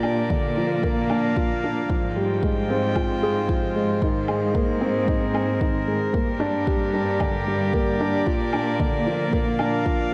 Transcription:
Already playing: A#2 A#3 F4 G4 A#4 D5
0.03 D4, low woodblock
0.30 D3, kick
0.57 F3
0.72 F5
0.83 A#3, kick
1.10 D4, low woodblock
1.36 F4, kick
1.64 D4
1.89 G#2 F3 G#3, kick
2.03 C5
2.09 F4 G5
2.16 G3
2.43 G#3, kick
2.70 C4
2.96 F4, kick, low woodblock
3.23 G#4
3.49 F3, kick
3.76 G#3
4.02 G#2 D#3, kick
4.11 G#4
4.28 G#3, low woodblock
4.55 A#3 A#4, kick
4.81 C4
5.08 D#4, kick
5.34 C4, low woodblock
5.61 D#3, kick
5.87 G#3
6.13 G2 G3 A#3, kick
6.20 G4
6.35 D5
6.40 D4
6.67 G4, kick
6.94 D4
7.20 D3, kick, low woodblock
7.47 G3
7.73 A#3, kick
8.01 D4
8.26 A#2 A#3 F4, kick
8.53 D4, low woodblock
8.80 D3, kick
9.06 F3
9.21 F5
9.33 A#3, kick
9.59 D4, low woodblock
9.85 F4, kick

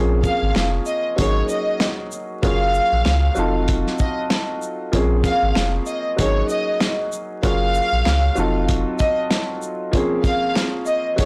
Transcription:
Already playing: A#1 F3 A#3 C4 C#4 G#4
0.23 F5, kick, shaker
0.42 G#1
0.55 F1, finger snap, snare, closed hi-hat
0.86 D#5, shaker
1.16 G#1 F#3 A#3 C#4 D#4 G#4 C#5, kick, closed hi-hat
1.49 D#5, shaker
1.80 finger snap, snare, closed hi-hat
2.12 shaker
2.42 F#1 F#3 A#3 C#4 F4 G#4 F5, kick, closed hi-hat
2.74 shaker
2.92 A#1
3.05 C#2, finger snap, snare, closed hi-hat
3.35 F1 F#3 C4 D#4 F4, shaker
3.39 A4
3.68 kick, closed hi-hat
3.87 snare
3.99 D#5, kick, shaker
4.30 finger snap, snare, closed hi-hat
4.62 shaker
4.92 A#1 F3 A#3 C4 C#4, kick, closed hi-hat
4.96 G#4
5.24 F5, kick, closed hi-hat, shaker
5.42 G#1
5.55 F1, finger snap, snare, closed hi-hat
5.86 D#5, shaker
6.16 G#1 F#3 A#3 C#4 D#4 C#5, kick, closed hi-hat
6.20 G#4
6.49 D#5, shaker
6.80 finger snap, snare, closed hi-hat
7.12 shaker
7.43 F#1 F#3 A#3 C#4 F4 G#4 F5, kick, closed hi-hat
7.75 shaker
7.92 A#1
8.05 C#2, finger snap, snare, closed hi-hat
8.35 F1 F#3 C4 D#4 F4, shaker
8.39 A4
8.68 kick, closed hi-hat
8.99 D#5, kick, closed hi-hat, shaker
9.31 finger snap, snare, closed hi-hat
9.62 shaker
9.91 F3 A#3 C4 C#4, kick, closed hi-hat
9.96 G#4
10.24 F5, kick, closed hi-hat, shaker
10.55 finger snap, snare, closed hi-hat
10.86 D#5, shaker
11.16 F#3 A#3 C#4 D#4 C#5, kick, closed hi-hat
11.20 G#4

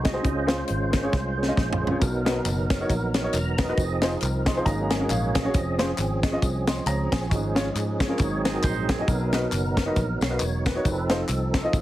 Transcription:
Already playing: C2 G#3 D#4 F#4
0.03 G#4 D#5, kick, snare, closed hi-hat
0.12 D#4 F#4 G#4 C5
0.22 C#2 C#3 G#3 C#4 F4 C5, kick, closed hi-hat
0.46 C#4 F4 G#4 C5, snare, closed hi-hat
0.68 G#1, closed hi-hat
0.90 G#4 A#4, kick, snare, closed hi-hat
1.02 C#4 F4 G#4 C#5
1.13 C2, kick, snare
1.37 G#4 C#5
1.43 snare
1.47 C#4 F4 G#4 D#5
1.57 A#1, kick, snare
1.73 floor tom
1.82 G#4 C#5
1.87 C#4 F4 G#4, floor tom
1.91 C#5
2.00 B1 B2 F#3 B3 D#4 A#4, kick, closed hi-hat, tambourine
2.25 D#4 F#4 A#4 B4, snare, closed hi-hat, tambourine
2.45 F#1, clap, closed hi-hat, tambourine
2.70 A#4 C#5, kick, snare, closed hi-hat, tambourine
2.80 D#4 F#4 A#4 C#5
2.90 A#1, kick, closed hi-hat, tambourine
3.14 A#4 C#5, snare, closed hi-hat, tambourine
3.23 D#4 F#4 A#4 C#5
3.33 E1 A#5, clap, closed hi-hat, tambourine
3.57 A#4 B4 D#5, kick, snare, closed hi-hat, tambourine
3.68 D#4 F#4 A#4 B4
3.77 F1 F3 C4 D#4 F#4, kick, closed hi-hat, tambourine
3.83 G#4
4.02 D#4 F4 G#4 C5, snare, closed hi-hat, tambourine
4.21 C2 A#4, clap, closed hi-hat, tambourine
4.46 G#4 D#5 C6, kick, snare, closed hi-hat, tambourine
4.56 D#4 F4 G#4 C5
4.65 G#1 G#2 F#3 A#3 C#4 G#4 A#5, kick, closed hi-hat, tambourine
4.89 G#4 A#4 G#5, snare, closed hi-hat, tambourine
5.00 C#4 F#4 G#4 A#4
5.10 A#1 C#5 F5, clap, closed hi-hat, tambourine
5.34 G#4 A#4 D#5, kick, snare, closed hi-hat, tambourine
5.44 C#4 F#4 G#4 C#5
5.54 F1 E3 C4 C#4 G#4, kick, closed hi-hat, tambourine
5.60 F3
5.78 C#4 F4 G#4 C5, snare, closed hi-hat, tambourine
5.98 G#1, clap, closed hi-hat, tambourine
6.22 G#4 D#5, kick, snare, closed hi-hat, tambourine
6.32 C#4 F4 G#4 D#5
6.42 C2, kick, closed hi-hat, tambourine
6.67 D#5 C6, snare, closed hi-hat, tambourine
6.86 C#2 C#5 A#5, clap, closed hi-hat, tambourine
7.12 A#1 C5 G#5, kick, snare, closed hi-hat, tambourine
7.28 G#1 G#2 F3 G#3 C#4 F#4, kick, closed hi-hat
7.33 G#4, tambourine
7.55 C#4 F4 G#4 C#5, snare, closed hi-hat, tambourine
7.74 G#2 G#4, clap, closed hi-hat, tambourine
7.99 G#4 C#5, kick, snare, closed hi-hat, tambourine
8.08 C#4 F4 G#4 A#4
8.17 G#1 G#2 F#3 C4 D#4 G#4, kick, clap, closed hi-hat, tambourine
8.45 C4 G#4 C5, snare, closed hi-hat, tambourine
8.54 D#4 F#4 G#4 A#4
8.63 A#1 D#4 C5, kick, clap, closed hi-hat, tambourine
8.89 C4 G#4 A#4, kick, snare, closed hi-hat, tambourine
8.99 D#4 F#4 G#4 D#5
9.08 B1 B2 F#3 B3 D#4 A#4, kick, closed hi-hat, tambourine
9.33 D#4 F#4 A#4 B4, snare, closed hi-hat, tambourine
9.52 F#1, clap, closed hi-hat, tambourine
9.76 A#4 B4, kick, snare, closed hi-hat, tambourine
9.86 D#4 F#4 A#4 B4
9.96 A#1, kick, closed hi-hat, tambourine
10.21 B1 A#4 C#5 F5, snare, closed hi-hat, tambourine
10.29 D#4 F#4 A#4 B4
10.40 E1 C#5, clap, closed hi-hat, tambourine
10.65 A#4 B4, kick, snare, closed hi-hat, tambourine
10.75 D#4 F#4 A#4 C#5
10.85 F1 F3 C4 D#4 F#4, kick, closed hi-hat, tambourine
10.90 A4
11.10 D#4 F4 A4 C5, snare, closed hi-hat, tambourine
11.29 C2, clap, closed hi-hat, tambourine
11.53 A4 C5, kick, snare, closed hi-hat, tambourine
11.63 D#4 F4 A4 D#5
11.73 A1, kick, closed hi-hat, tambourine

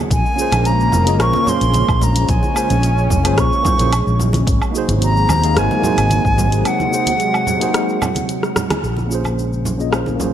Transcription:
Already playing: G#3
0.10 A#1 C#3 A#3 G#5, kick, closed hi-hat, shaker
0.26 shaker
0.34 A#3 C#4 F4
0.39 G#4 C5, shaker
0.52 A#1, closed hi-hat, high conga, low woodblock, shaker
0.65 A#5, closed hi-hat, shaker
0.80 shaker
0.92 F1, low conga, shaker
1.04 A#3 C#4 F4 G#4 D#5, closed hi-hat, shaker
1.17 A#1 A#3 C#4 F4 G#4 C5 C#6, cross-stick, closed hi-hat, low woodblock, shaker
1.33 high conga, shaker
1.43 A#3 C#4 F4
1.47 G#4 C5 C6, low conga, shaker
1.61 A#1, closed hi-hat, shaker
1.74 closed hi-hat, high conga, shaker
1.88 A#1, kick, low woodblock, shaker
2.01 A#5, low conga, shaker
2.16 closed hi-hat, shaker
2.28 A#1 C#4 G#5, kick, closed hi-hat, shaker
2.43 high conga, shaker
2.54 A#3 C#4 F4 G#4 C5, low woodblock, shaker
2.70 A#1, closed hi-hat, high conga, shaker
2.83 closed hi-hat, shaker
2.98 shaker
3.10 F1, kick, low conga, shaker
3.23 A#3 C#4 F4 G#4 C5, closed hi-hat, low woodblock, shaker
3.38 A#1 C#6, kick, cross-stick, closed hi-hat, shaker
3.53 shaker
3.63 A#3 C#4 F4 G#4 C5, kick, low conga, shaker
3.77 A#1 A#3 C#4 F4 G#4 C5, closed hi-hat, high conga, shaker
3.93 closed hi-hat, low woodblock, shaker
4.07 A#1, shaker
4.19 low conga, shaker
4.33 closed hi-hat, high conga, shaker
4.47 G#1 C3 F#3 G#3, kick, closed hi-hat, shaker
4.62 low woodblock, shaker
4.71 A#3 D#4 F#4
4.75 G#4 C5, shaker
4.89 G#1, closed hi-hat, high conga, shaker
5.02 A#5, closed hi-hat, shaker
5.17 shaker
5.29 D#2, low conga, low woodblock, shaker
5.41 A#3 D#4 F#4 G#4 F5, closed hi-hat, shaker
5.54 G#1 A#3 D#4 F#4 G#4 C5 G#5, cross-stick, closed hi-hat, shaker
5.71 high conga, shaker
5.80 A#3 D#4 F#4, low conga
5.84 G#4 C5, shaker
5.98 G#1, closed hi-hat, low woodblock, shaker
6.10 closed hi-hat, high conga, shaker
6.25 G#1, kick, shaker
6.38 low conga, shaker
6.52 closed hi-hat, shaker
6.65 F#5, closed hi-hat, low woodblock, shaker
6.80 high conga, shaker
6.90 A#3 D#4 F#4 G#4 C5, shaker
7.07 closed hi-hat, high conga, shaker
7.20 closed hi-hat, shaker
7.34 low woodblock, shaker
7.47 low conga, shaker
7.59 A#3 D#4 F#4 G#4 C5, closed hi-hat, shaker
7.74 cross-stick, closed hi-hat, shaker
7.89 shaker
8.02 low conga, low woodblock, shaker
8.15 closed hi-hat, high conga, shaker
8.29 closed hi-hat, shaker
8.43 cross-stick, shaker
8.56 cross-stick, low conga, shaker
8.70 cross-stick, closed hi-hat, high conga, low woodblock, shaker
8.84 A#1 C#3 G#3 A#3, shaker
8.97 high conga, shaker
9.07 A#3 C#4 F4
9.11 G#4 C5, shaker
9.24 high conga, low woodblock, shaker
9.39 shaker
9.53 shaker
9.65 low conga, shaker
9.77 A#3 C#4 F4 G#4 D#5, shaker
9.90 A#3 C#4 F4 G#4, cross-stick, low woodblock, shaker
9.94 C5
10.06 high conga, shaker
10.16 A#3 C#4 F4, low conga
10.20 G#4 C5, shaker

